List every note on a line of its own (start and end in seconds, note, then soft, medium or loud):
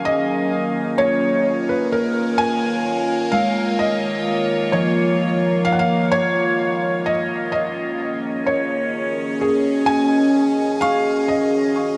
0.00 11.97 D#3 medium
0.00 11.97 A#3 medium
0.00 3.04 C#4 medium
0.00 1.77 G#4 medium
0.00 9.75 A#4 medium
0.05 8.69 A#3 medium
0.05 1.01 D#5 medium
0.50 7.54 F4 medium
0.98 1.71 C#5 medium
0.98 3.92 C#5 medium
1.20 10.14 C#5 medium
1.69 1.93 B4 medium
1.92 2.41 A#4 medium
2.38 3.35 G#5 loud
3.32 4.92 G#3 soft
3.32 3.80 F5 medium
3.79 4.76 D#5 medium
4.72 7.67 F3 medium
4.72 5.69 C#5 medium
5.65 5.73 F5 loud
5.72 5.80 F#5 medium
5.79 6.14 F5 medium
6.12 7.09 C#5 loud
7.06 7.50 D#5 medium
7.52 11.97 C#4 medium
7.52 8.50 D#5 medium
8.05 11.97 G#4 medium
8.23 11.97 D#5 loud
8.46 9.44 C#5 medium
8.82 11.97 F#4 medium
9.41 9.90 G#4 medium
9.86 10.84 G#5 loud
10.81 11.30 F5 medium
10.81 11.97 C#6 medium
11.28 11.97 D#5 medium